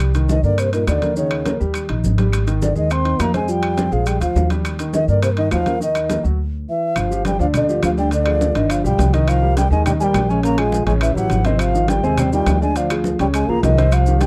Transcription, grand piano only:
0.15 D#3 D#4
0.44 A#3 A#4
0.73 D#4 D#5
1.02 A#3 A#4
1.17 D#3 D#4
1.45 A#3 A#4
1.60 G3 G4
1.89 D#4 D#5
2.18 G3 G4
2.47 D#3 D#4
2.75 G#3 G#4
3.05 D#4 D#5
3.34 C4 C5
3.48 F3 F4
3.77 C4 C5
3.92 G#3 G#4
4.20 F4 F5
4.51 G3 G4
4.79 D#3 D#4
5.09 A#3 A#4
5.38 D#4 D#5
5.66 A#3 A#4
5.80 D#3 D#4
6.09 A#3 A#4
6.23 F#3 F#4
7.11 F3 F4 G4
7.40 D3 D4 D5
7.54 D3 D4 D5
7.69 F3 F4 G4
7.98 D3 D4 D5
8.12 D3 D4 D5
8.27 F3 F4 G#4
8.55 D3 D4 D5
8.84 F3 F4 G4
9.13 D#3 D#4 D#5
9.42 G3 G4 A#4
9.72 D#3 D#4 D#5
9.87 D#3 D#4 D#5
10.01 G3 G4 A#4
10.30 C#3 C#4 C#5
10.44 C#3 C#4 C#5
10.58 F3 F4 G#4
10.86 C#3 C#4 C#5
11.16 E3 E4 G4
11.46 C3 C4 C5
11.74 D#3 D#4 F4
12.03 C3 C4 C5
12.19 C3 C4 C5
12.33 D#3 D#4 F4
12.62 D3 D4 D5
12.76 D3 D4 D5
12.91 F3 F4 G#4
13.20 C#3 C#4 C#5
13.49 F3 F4 G#4
13.78 C3 C4 C5
14.07 D#3 D#4 G4

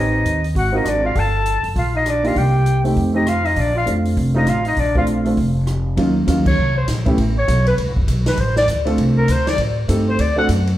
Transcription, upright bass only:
Already playing: A1
0.25 D#2
0.55 G#1
0.85 G#1
1.16 G1
1.63 F#1
1.76 A#1
2.36 C2
2.96 F2
3.57 A#1
3.87 F2
4.17 F1
4.47 A1
4.77 A#1
5.37 F1
5.98 D#2
6.27 D#2
6.58 C2
6.88 A#1
7.18 A1
7.48 B1
7.87 A1
7.98 G1
8.08 B1
8.38 A1
8.68 D2
8.98 C2
9.28 D2
9.58 A2
9.89 G2
10.19 D2
10.49 F#2

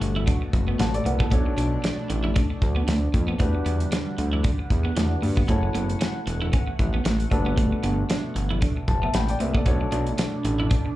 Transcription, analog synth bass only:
0.01 G1
0.53 F#1
0.79 A1
1.05 C2
1.32 B1
1.57 B1
2.09 A1
2.62 D2
2.88 D2
3.14 F2
3.40 E2
3.66 E2
4.18 D2
4.70 E2
4.96 E2
5.23 G2
5.49 F#1
5.75 F#1
6.27 E1
6.79 A1
7.05 A1
7.32 G1
7.83 G1
8.35 G1
8.88 F#1
9.14 A1
9.40 C2
9.66 B1
9.92 B1
10.44 A1

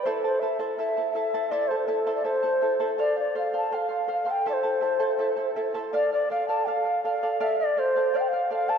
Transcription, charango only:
0.06 E4 A4 C5 E5 A5
0.24 E4 A4 A5
0.42 E4 A4 E5 A5
0.59 E4 A4 C5 E5 A5
0.78 E4 A4 E5 A5
0.97 E4 A4 A5
1.15 E4 A4 E5 A5
1.34 E4 A4 C5 E5 A5
1.51 E4 A4 C5 E5 A5
1.71 E4 A4 A5
1.87 E4 A4 E5 A5
2.07 E4 A4 C5 E5 A5
2.24 E4 A4 E5 A5
2.43 E4 A4 A5
2.61 E4 A4 E5 A5
2.80 E4 A4 C5 E5 A5
2.98 A4 C5 F5
3.16 C5 F5
3.35 A4 C5 F5
3.53 A4 C5 F5
3.71 A4 C5 F5
3.89 C5 F5
4.07 A4 C5 F5
4.25 A4 C5 F5
4.46 E4 A4 C5 E5 A5
4.63 E4 A4 A5
4.81 E4 A4 E5 A5
5.00 E4 A4 C5 E5 A5
5.19 E4 A4 E5 A5
5.36 E4 A4 A5
5.56 E4 A4 E5 A5
5.74 E4 A4 C5 E5 A5
5.93 A4 D5 F5
6.12 D5 F5
6.30 A4 D5 F5
6.49 A4 D5 F5
6.67 A4 D5 F5
6.84 D5 F5
7.04 A4 D5 F5
7.23 A4 D5 F5
7.40 A4 D5 F5
7.60 D5 F5
7.77 A4 D5 F5
7.96 A4 D5 F5
8.13 A4 D5 F5
8.33 D5 F5
8.50 A4 D5 F5
8.68 A4 D5 F5

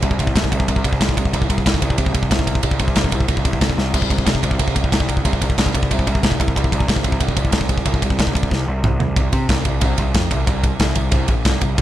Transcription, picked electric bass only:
0.03 C2
0.20 C2
0.35 C2
0.52 C2
0.68 C2
0.85 C2
1.01 C2
1.17 C2
1.34 C2
1.49 C2
1.66 C2
1.82 C2
1.98 C2
2.14 C2
2.31 C2
2.63 C2
2.80 C2
2.96 C2
3.13 C2
3.28 C2
3.44 C2
3.61 C2
3.77 C2
3.94 C2
4.10 C2
4.26 C2
4.43 C2
4.59 C2
4.76 C2
4.92 C2
5.25 C2
5.42 C2
5.58 C2
5.75 C2
5.91 C2
6.07 C2
6.23 C2
6.40 C2
6.56 C2
6.73 C2
6.89 C2
7.04 C2
7.20 C2
7.37 C2
7.52 C2
7.86 C2
8.02 C2
8.19 C2
8.35 C2
8.51 C2
8.68 C2
8.84 C2
9.00 C2
9.16 C2
9.33 C3
9.49 C2
9.66 C2
9.82 C2
9.99 C2
10.15 F2
10.31 C2
10.47 C2
10.80 C2
10.96 C2
11.12 C2
11.28 A#1
11.45 C2
11.62 C2
11.78 C2

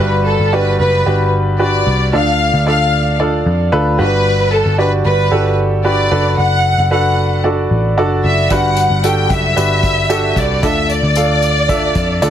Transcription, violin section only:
Already playing: B4
0.26 A4
0.53 B4
0.80 B4
1.60 D5
2.14 F5
2.68 F5
4.00 B4
4.52 A4
4.79 B4
5.05 B4
5.85 D5
6.38 F#5
6.92 F#5
8.25 E5
8.51 F#5
9.04 G5
9.32 E5
10.38 D5
10.64 E5
10.91 D5

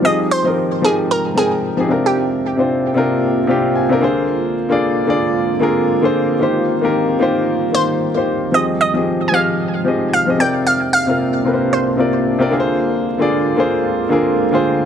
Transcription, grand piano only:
0.02 F3 C4 D#4 G4 G#4
0.44 F3 C4 D#4 G4 A#4
0.82 F3 C4 D#4 G4 A#4
1.35 F3 C4 D#4 A#4 G5
1.77 F3 C4 D#4 G4 G#4
1.88 C3 C4 D4 F4 A#4
2.56 C3 C4 D4 F4 C5
2.94 C3 C4 D4 F4 A#4
3.47 C3 C4 D4 F4 G4 F5
3.75 G#5
3.89 C3 C4 D4 F4 A#4
4.00 D3 A#3 F4 G#4 C5
4.69 D3 A#3 F4 G#4 D5
5.06 D3 A#3 F4 G#4 D5
5.60 D3 A#3 F4 G#4 A#4
6.02 D3 A#3 F4 G#4 C5
6.39 D#3 A#3 F4 G4 C5
6.81 D#3 A#3 F4 G4 A#4
7.19 D#3 A#3 F4 G4 C5
7.72 D#3 A#3 F4 G4 C5
8.14 D#3 A#3 F4 G4 C5
8.52 F3 C4 G4 G#4 D#5
8.93 F3 C4 G4 G#4 D#5
9.31 F3 C4 G4 G#4 D#5
9.84 F3 C4 G4 G#4 D#5
10.26 F3 C4 G4 G#4 D#5
10.38 C3 C4 F4 A#4 D5
11.06 C3 C4 F4 A#4 F5
11.44 C3 C4 F4 A#4 B4
11.54 C5
11.97 C3 C4 F4 A#4 D5
12.39 C3 C4 F4 A#4 D5
12.50 D3 A#3 F4 G#4 A#4
12.60 C5
13.18 D3 A#3 F4 G#4 D5
13.56 D3 A#3 F4 G#4 C5
14.09 D3 A#3 F4 G#4 A#4
14.51 D3 A#3 F4 G#4 C5

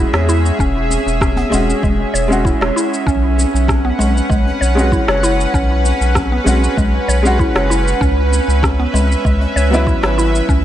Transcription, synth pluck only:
Already playing: E4
0.14 C#5
0.29 E4
0.60 C#4
1.21 C#4
1.37 B3
1.52 G#3
1.83 G#3
2.14 C#5
2.45 E4
2.61 C#5
2.76 E4
3.07 C#4
3.69 C#4
3.85 B3
3.99 G#3
4.30 G#3
4.61 C#5
4.92 E4
5.09 C#5
5.23 E4
5.54 C#4
6.16 C#4
6.32 B3
6.46 G#3
6.77 G#3
7.08 C#5
7.39 E4
7.55 C#5
7.70 E4
8.01 C#4
8.63 C#4
8.80 B3
8.94 G#3
9.25 G#3
9.56 C#5
9.87 E4
10.03 C#5
10.18 E4
10.49 C#4

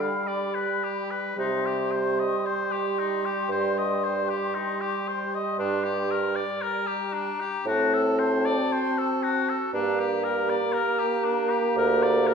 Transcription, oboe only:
0.00 F5
0.27 D5
0.55 B4
0.83 G4
1.11 B4
1.39 D#4
1.66 G4
1.92 C5
2.19 D#5
2.46 C5
2.72 G4
2.99 D#4
3.26 G4
3.51 C5
3.78 D#5
4.03 C5
4.29 G4
4.54 D#4
4.81 G4
5.08 C5
5.34 D#5
5.59 D4
5.84 G4
6.11 A#4
6.36 D5
6.62 A#4
6.87 G4
7.14 D4
7.40 G4
7.67 F#4
7.94 A4
8.19 C5
8.45 D5
8.72 C5
8.98 A4
9.23 F#4
9.49 A4
9.74 D4
9.99 G4
10.24 A#4
10.49 D5
10.73 A#4
10.99 G4
11.24 D4
11.50 G4
11.78 A#4
12.03 D5
12.27 A#4

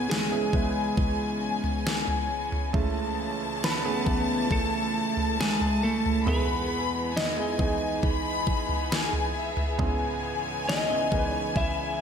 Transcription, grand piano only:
Already playing: C#2 G#2 G#3 B3 C#4 E4 G#4
0.31 G#3 B3 C#4 E4 G#4
0.54 G#3 B3 C#4 E4 B4
2.73 C#2 C#3 G#3 A3 C#4 E4
3.83 G#3 A3 C#4 E4 G#4
4.05 E3 C#4 E4 B4
6.26 E2 B2 G#3 B3 D#4 E4 G#4
7.37 G#3 B3 D#4 E4 G#4
7.58 E3 G#3 B3 D#4 G#4
9.78 C#2 G#2 G#3 B3 C#4 E4 G#4
10.89 G#3 B3 C#4 E4 G#4
11.11 E3 G#3 B3 C#4 A#4
11.18 B4

